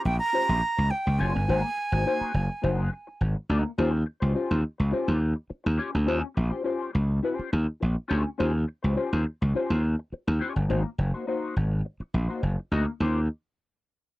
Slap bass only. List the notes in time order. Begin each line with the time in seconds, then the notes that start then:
0.05 A#1
0.49 A#1
0.78 C#2
1.07 C#2
1.20 F#1
1.35 G1
1.49 G#1
1.92 G#1
2.21 muted slap bass stroke
2.34 F#1
2.63 F#1
3.21 G#1
3.49 D2
3.78 D#2
4.22 C#2
4.51 D#2
4.80 C#2
4.93 muted slap bass stroke
5.08 D#2
5.50 muted slap bass stroke
5.66 D#2
5.95 D2
6.08 D#2
6.37 A#1
6.95 C#2
7.39 muted slap bass stroke
7.53 D#2
7.82 A#1
8.10 D2
8.40 D#2
8.84 C#2
9.13 D#2
9.42 C#2
9.55 muted slap bass stroke
9.70 D#2
10.12 muted slap bass stroke
10.28 D#2
10.56 G1
10.70 G#1
10.98 F#1
11.56 G#1
12.00 muted slap bass stroke
12.14 A#1
12.43 F#1
12.72 D2
13.00 D#2